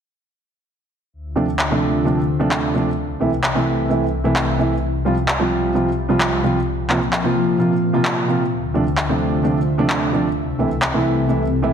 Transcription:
1.13 D2 D3 F4 C5 E5
1.36 C3 F3 A3 D4
1.59 clap
1.70 C3 F3 A3 D4
2.05 C3 F3 A3 D4
2.40 C3 F3 A3 D4
2.51 clap
2.74 C3 F3 A3 D4
2.97 C2 C3 E4 A4 E5
3.20 C3 E3 A3 E4
3.44 clap
3.55 C3 E3 A3 E4
3.89 C3 E3 A3 E4
4.24 C3 E3 A3 E4
4.36 clap
4.59 C3 E3 A3 E4
4.82 F4 G4 G5
5.05 C3 F3 G3 F4
5.28 clap
5.39 C3 F3 G3 F4
5.74 C3 F3 G3 F4
6.09 C3 F3 G3 F4
6.21 clap
6.43 C3 F3 G3 F4
6.67 A#2 F3 C4 A#4 F5
6.89 C3 F3 A#3 F4, clap
7.13 clap
7.24 C3 F3 A#3 F4
7.58 C3 F3 A#3 F4
7.93 C3 F3 A#3 F4
8.05 clap
8.28 C3 F3 A#3 F4
8.51 D2 D3 F4 C5 E5
8.74 C3 F3 A3 D4
8.98 clap
9.09 C3 F3 A3 D4
9.43 C3 F3 A3 D4
9.78 C3 F3 A3 D4
9.90 clap
10.13 C3 F3 A3 D4
10.36 C2 C3 E4 A4
10.59 C3 E3 A3 E4
10.82 clap
10.93 C3 E3 A3 E4
11.28 C3 E3 A3 E4
11.63 C3 E3 A3 E4

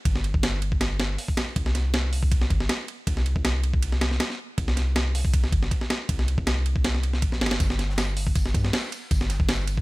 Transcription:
0.05 G1, kick, ride
0.16 snare
0.24 ride
0.34 G1, kick
0.43 snare, ride
0.62 ride
0.72 kick
0.81 snare, ride
1.00 snare, ride
1.18 open hi-hat
1.28 kick
1.37 snare, ride
1.56 C2, kick, ride
1.66 snare
1.75 snare, ride
1.94 snare, ride
2.13 open hi-hat
2.23 kick
2.32 kick, ride
2.41 snare
2.50 G1, kick, ride
2.60 snare
2.69 snare, ride
2.88 ride
3.07 C2, kick, ride
3.17 snare
3.26 ride
3.36 C2, kick
3.45 snare, ride
3.64 ride
3.74 kick
3.83 ride
3.92 snare
4.01 snare, ride
4.11 snare
4.20 snare, ride
4.30 snare
4.58 C2, kick, ride
4.68 snare
4.77 snare, ride
4.96 snare, ride
5.15 open hi-hat
5.25 kick
5.34 kick, ride
5.44 snare
5.52 G1, kick, ride
5.63 snare
5.71 kick, ride
5.81 snare
5.90 snare, ride
6.09 C2, kick, ride
6.19 snare
6.28 ride
6.38 C2, kick
6.47 snare, ride
6.66 ride
6.76 kick
6.85 snare, ride
6.94 snare
7.03 ride
7.13 snare
7.22 A#1, kick, ride
7.32 snare
7.41 G1, snare, ride
7.46 snare, ride
7.51 snare, ride
7.60 G1, kick, ride, tambourine
7.70 snare
7.79 snare, ride, tambourine
7.89 snare
7.98 snare, ride, tambourine
8.17 open hi-hat, tambourine
8.27 kick
8.35 kick, ride, tambourine
8.46 snare
8.54 G2, kick, ride, tambourine
8.64 snare
8.73 snare, open hi-hat, ride
8.83 snare
8.92 ride, tambourine
9.11 G1, kick, ride, tambourine
9.21 snare
9.30 snare, ride, tambourine
9.40 G1, kick
9.49 snare, ride, tambourine
9.59 snare
9.67 ride, tambourine
9.78 kick

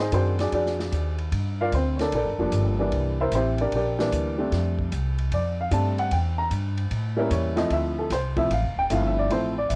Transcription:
Already playing: G#2
0.00 D#4 G#4 C5 D#5
0.12 F#2 D#3 F#3 C4 D4 F#4 G#4 C5, kick, hi-hat pedal, ride
0.39 D4 F#4 G#4 D5, snare, ride
0.52 F2 D4 F#4 G#4 D5, kick, ride
0.66 snare
0.80 snare
0.92 D#2, kick, hi-hat pedal, ride
1.18 ride
1.32 G2, kick, ride
1.61 F4 A#4 D5 F5
1.72 D2 C4 C5, kick, hi-hat pedal, ride
1.96 C#5, snare, ride
2.00 D4 A4 A#4 D5
2.12 A#1 D4 A4 A#4 D5, kick, ride
2.25 G1
2.38 F1 F3 G3 A#3 D4
2.52 G1, kick, hi-hat pedal, ride
2.79 E3 G3 A#3 D4
2.92 C2, kick, ride
3.21 E4 A#4 C5 E5
3.32 A1 C4 E4 G4 C5, kick, hi-hat pedal, ride
3.58 D4 G4 A#4 D5, ride
3.72 A#1 D4 G4 D5, kick, ride
3.76 A#4
3.99 E3 G3 A#3 D4, snare
4.12 D2, kick, hi-hat pedal, ride
4.38 G3 A3 C4 D4
4.52 F2, kick, snare, ride
4.79 kick
4.92 C2, kick, hi-hat pedal, ride
5.18 ride
5.32 F2 D5, kick, ride
5.61 F5
5.71 G2 G3 A3 C4 D4 A5, kick, hi-hat pedal, ride
5.98 F#5, ride
6.11 E2 G5, kick, ride
6.38 A#5
6.51 G2, kick, hi-hat pedal, ride
6.77 ride
6.91 A2, kick, ride
7.16 G3 A#3 C#4 E4 A#4
7.30 E2 C#5, kick, hi-hat pedal, ride
7.56 F3 A3 C4 E4 D#5, snare, ride
7.70 D2 E5, kick, ride
7.99 A4
8.10 C2 C5, kick, snare, hi-hat pedal, ride
8.36 F3 A3 C4 E4 E5, kick, ride
8.50 A1 F5, kick, ride
8.62 F1
8.76 D1 G5
8.90 G1 F3 A3 C4 E4 F5, kick, hi-hat pedal, ride
9.07 E5
9.19 D5
9.29 A1 F3 A3 C4 E4 C5, kick, ride
9.58 D5
9.69 A#1 E5, kick, hi-hat pedal, ride

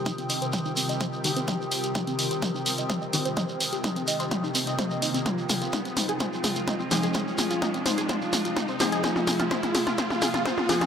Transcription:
Already playing: C3 D#3 G3 C4 D4 F4 G4 A#4 G5 D#6, riser
0.06 D#4, kick, closed hi-hat, mid tom, shekere
0.18 C4, closed hi-hat, shekere
0.30 D#5, open hi-hat, shekere
0.42 C5, closed hi-hat, shekere
0.53 G4, kick, closed hi-hat, mid tom, shekere
0.65 D#4, shekere
0.77 C4, open hi-hat, shekere
0.89 D#5, closed hi-hat, shekere
1.01 C5, kick, closed hi-hat, mid tom, shekere
1.13 D#5, shekere
1.24 D#3 C4 D#4 G4, open hi-hat, shekere
1.36 C4, closed hi-hat, shekere
1.48 G4 D#5, kick, closed hi-hat, mid tom, shekere
1.61 shekere
1.72 C5, open hi-hat, shekere
1.84 G4, closed hi-hat, shekere
1.95 D#4, kick, closed hi-hat, mid tom, shekere
2.07 C4, closed hi-hat, shekere
2.19 A#4 D#5, open hi-hat, shekere
2.31 C5, closed hi-hat, shekere
2.42 G4, kick, closed hi-hat, mid tom, shekere
2.55 D#4, shekere
2.66 C4, open hi-hat, shekere
2.78 D#5, closed hi-hat, shekere
2.90 C5, kick, closed hi-hat, mid tom, shekere
3.01 D#5, shekere
3.13 D#3 C4 D#4 G4 C5, open hi-hat, shekere
3.25 C4, closed hi-hat, shekere
3.37 D#5, kick, closed hi-hat, mid tom, shekere
3.49 shekere
3.60 C5, open hi-hat, shekere
3.73 G4, closed hi-hat, shekere
3.84 D#4, kick, closed hi-hat, mid tom, shekere
3.96 C4, closed hi-hat, shekere
4.08 D#5, open hi-hat, shekere
4.19 C5, closed hi-hat, shekere
4.31 G4, kick, closed hi-hat, mid tom, shekere
4.44 D#4, shekere
4.55 C4, open hi-hat, shekere
4.67 D#5, closed hi-hat, shekere
4.79 C5, kick, closed hi-hat, mid tom, shekere
4.91 D#5, shekere
5.02 D#4, open hi-hat, shekere
5.14 C4, closed hi-hat, shekere
5.26 F3 G#3 F4 C5, kick, closed hi-hat, mid tom, shekere
5.38 shekere
5.49 G#4, open hi-hat, mid tom, shekere
5.62 F4, closed hi-hat, shekere
5.73 D#4, kick, closed hi-hat, mid tom, shekere
5.85 C4, closed hi-hat, shekere
5.97 D#4 C5, open hi-hat, mid tom, shekere
6.08 G#4, closed hi-hat, shekere
6.20 F4 C5, kick, closed hi-hat, mid tom, shekere
6.33 shekere
6.44 G#4, open hi-hat, mid tom, shekere
6.56 F4, closed hi-hat, shekere
6.68 D#4, kick, closed hi-hat, mid tom, shekere
6.79 C4, shekere
6.91 F3 C4 D#4 G#4 C5, open hi-hat, mid tom, shekere
7.03 G#4, closed hi-hat, shekere
7.14 F4 C5, kick, closed hi-hat, mid tom, shekere
7.28 shekere
7.38 G#4, open hi-hat, mid tom, shekere
7.50 F4, closed hi-hat, shekere
7.62 D#4, kick, closed hi-hat, mid tom, shekere
7.74 C4, closed hi-hat, shekere
7.86 D#4 C5, open hi-hat, mid tom, shekere
7.98 G#4, closed hi-hat, shekere
8.09 F4 C5, kick, closed hi-hat, mid tom, shekere
8.22 shekere
8.33 G#4, open hi-hat, mid tom, shekere
8.45 F4, closed hi-hat, shekere
8.57 D#4, kick, closed hi-hat, mid tom, shekere
8.68 C4, shekere
8.80 F3 C4 D#4 G#4 C5, open hi-hat, mid tom, shekere
8.92 G#4, closed hi-hat, shekere
9.04 F4 C5, kick, closed hi-hat, mid tom, shekere
9.16 mid tom, shekere
9.27 G#4, open hi-hat, mid tom, shekere
9.39 F4, closed hi-hat, mid tom, shekere
9.51 F4 C5, kick, closed hi-hat, mid tom, shekere
9.63 closed hi-hat, mid tom, shekere
9.75 G#4, open hi-hat, mid tom, shekere
9.87 F4, closed hi-hat, mid tom, shekere
9.98 F4 C5, kick, closed hi-hat, mid tom, shekere
10.10 mid tom, shekere
10.22 G#4, open hi-hat, mid tom, shekere
10.34 F4, closed hi-hat, mid tom, shekere
10.45 F4 C5, kick, closed hi-hat, mid tom, shekere
10.58 mid tom, shekere
10.69 F3 C4 G#4, open hi-hat, mid tom, shekere
10.81 F4, closed hi-hat, mid tom, shekere

